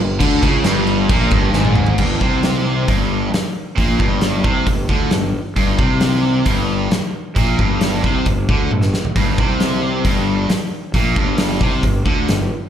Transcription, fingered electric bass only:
0.00 0.18 G1 medium
0.20 0.41 D2 loud
0.43 0.64 C#2 medium
0.65 1.07 G1 medium
1.09 1.30 A#1 medium
1.31 1.52 G1 medium
1.54 1.95 G#1 medium
1.99 2.20 G1 medium
2.21 2.84 C2 medium
2.88 3.30 G1 medium
3.33 muted fingered electric bass stroke soft
3.78 3.99 A#1 loud
4.00 4.42 G1 loud
4.44 4.66 C2 medium
4.67 4.88 G1 medium
4.89 5.11 D2 medium
5.14 5.34 G1 medium
5.56 5.77 G1 medium
5.79 6.42 C2 loud
6.46 6.88 G1 medium
6.93 muted fingered electric bass stroke soft
7.36 7.57 A#1 medium
7.59 8.01 G1 loud
8.03 8.24 C2 medium
8.26 8.47 G1 medium
8.49 8.69 D2 medium
8.74 8.93 G1 medium
9.17 9.37 G1 loud
9.39 10.02 C2 medium
10.05 10.46 G1 medium
10.50 muted fingered electric bass stroke soft
10.94 11.15 A#1 loud
11.17 11.58 G1 loud
11.61 11.82 C2 medium
11.84 12.05 G1 medium
12.06 12.27 D2 medium
12.29 12.50 G1 medium

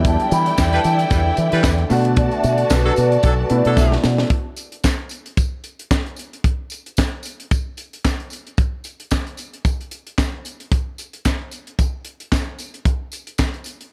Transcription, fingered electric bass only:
0.00 0.16 E2 loud
0.32 0.50 E3 loud
0.58 0.77 E2 medium
0.85 1.04 E3 loud
1.11 1.30 E2 loud
1.38 1.48 E3 loud
1.53 1.61 E3 medium
1.64 1.83 E2 medium
1.91 2.28 B2 medium
2.44 2.63 B2 loud
2.71 2.90 B1 loud
2.98 3.16 B2 loud
3.24 3.43 B1 loud
3.51 3.61 B2 loud
3.66 3.74 B2 medium
3.77 3.96 B1 medium
4.04 4.23 B2 loud

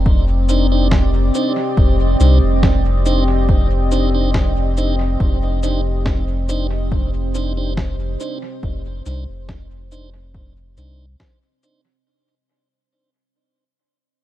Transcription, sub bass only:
0.00 1.31 F1 loud
1.77 2.15 F1 medium
2.20 2.40 C2 medium
2.42 5.16 F1 medium
5.20 8.16 F1 loud
8.63 9.01 F1 medium
9.06 9.26 C2 medium
9.29 10.77 F1 medium
10.78 11.15 C2 loud

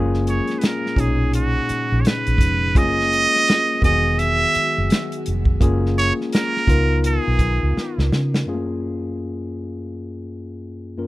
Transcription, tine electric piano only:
0.00 0.97 A#3 medium
0.00 0.96 C#4 medium
0.00 0.97 F4 medium
0.00 0.97 G#4 medium
0.96 2.71 A#2 medium
0.96 2.72 C#4 medium
0.96 2.72 D#4 medium
0.96 2.73 G#4 medium
2.75 2.83 G#3 soft
2.75 3.83 C#4 medium
2.75 3.83 F4 medium
2.75 3.83 G#4 medium
2.82 3.85 A#3 medium
3.81 5.57 D#3 medium
3.81 5.57 B3 medium
3.81 5.58 F#4 medium
3.81 5.59 G#4 medium
5.60 6.68 A#3 medium
5.60 6.68 C#4 medium
5.60 6.68 F4 medium
5.60 6.69 G#4 medium
6.67 8.42 B3 medium
6.67 8.43 D#4 medium
6.67 8.44 F4 medium
6.67 8.44 A#4 medium
8.46 10.92 F#2 medium
8.46 8.54 A3 soft
8.46 10.93 C#4 medium
8.46 10.93 F4 medium
8.46 10.94 G#4 medium
8.53 10.96 A#3 medium
10.97 11.07 F#2 soft
10.97 11.07 A#3 soft
10.97 11.07 C#4 soft
10.97 11.07 F4 soft
10.97 11.07 A#4 soft

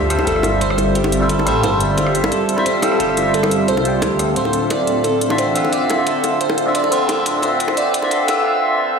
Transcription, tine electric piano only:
0.00 0.09 G3 medium
0.00 0.09 F4 medium
0.00 0.10 A4 medium
0.00 0.11 C5 medium
0.00 0.11 E5 medium
0.09 0.23 G3 medium
0.09 0.25 F4 medium
0.09 0.25 A4 medium
0.09 0.26 C5 medium
0.09 0.26 E5 medium
0.24 1.18 G3 medium
0.24 1.19 F4 medium
0.24 1.19 A4 medium
0.29 1.20 C5 medium
0.29 1.21 E5 medium
1.20 1.44 G3 medium
1.20 1.44 F4 medium
1.20 1.45 A4 medium
1.20 1.45 C5 medium
1.20 1.45 E5 medium
1.45 1.59 G3 loud
1.45 1.61 F4 medium
1.45 1.62 A4 medium
1.45 1.62 C5 medium
1.45 1.62 E5 loud
1.61 2.54 G3 medium
1.61 2.55 F4 medium
1.61 2.55 A4 medium
1.65 2.56 C5 medium
1.65 2.57 E5 medium
2.56 2.80 G3 medium
2.56 2.81 F4 medium
2.56 2.81 A4 medium
2.56 2.81 C5 medium
2.56 2.82 E5 medium
2.81 2.96 G3 medium
2.81 2.98 F4 medium
2.81 2.98 A4 medium
2.81 2.98 C5 medium
2.81 2.99 E5 medium
2.97 3.81 G3 medium
2.97 3.83 F4 medium
2.97 3.84 A4 medium
3.01 3.84 C5 medium
3.01 3.85 E5 medium
3.82 4.33 G3 medium
3.82 4.34 F4 medium
3.82 4.34 A4 medium
3.87 4.35 C5 medium
3.87 4.36 G5 medium
4.34 5.27 D3 medium
4.34 5.28 C4 medium
4.34 5.29 F4 medium
4.39 5.30 E5 medium
5.29 5.53 D3 medium
5.29 5.53 C4 medium
5.29 5.54 F4 medium
5.29 5.54 E5 medium
5.54 5.69 D3 medium
5.54 5.70 C4 medium
5.54 5.71 F4 medium
5.54 5.71 E5 medium
5.70 6.63 D3 medium
5.70 6.64 C4 medium
5.70 6.65 F4 medium
5.76 6.66 E5 medium
6.65 6.89 D3 medium
6.65 6.90 C4 medium
6.65 6.90 F4 medium
6.65 6.91 E5 medium
6.90 7.05 D3 loud
6.90 7.07 C4 medium
6.90 7.07 F4 medium
6.90 7.08 E5 loud
7.06 8.00 D3 medium
7.06 8.01 C4 medium
7.06 8.01 F4 medium
7.12 8.02 E5 medium
8.02 8.26 D3 medium
8.02 8.26 C4 medium
8.02 8.27 F4 medium
8.02 8.27 E5 medium
8.27 8.41 D3 medium
8.27 8.43 C4 medium
8.27 8.44 F4 medium
8.27 8.44 E5 medium
8.43 8.99 D3 medium
8.43 8.99 C4 medium
8.43 8.99 F4 medium
8.48 8.99 E5 medium

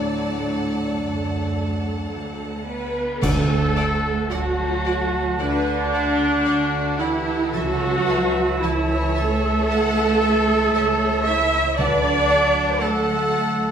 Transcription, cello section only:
0.00 0.91 A2 medium
0.95 2.09 F#2 medium
2.10 2.66 D2 medium
2.66 3.18 B3 medium
3.21 4.31 A3 medium
4.30 5.38 F#3 medium
5.38 7.00 D3 loud
7.00 7.53 E3 medium
7.53 8.62 F#3 medium
8.63 9.18 E3 medium
9.18 11.27 A3 loud
11.28 11.79 E4 medium
11.79 12.80 D4 loud
12.82 13.71 A3 medium

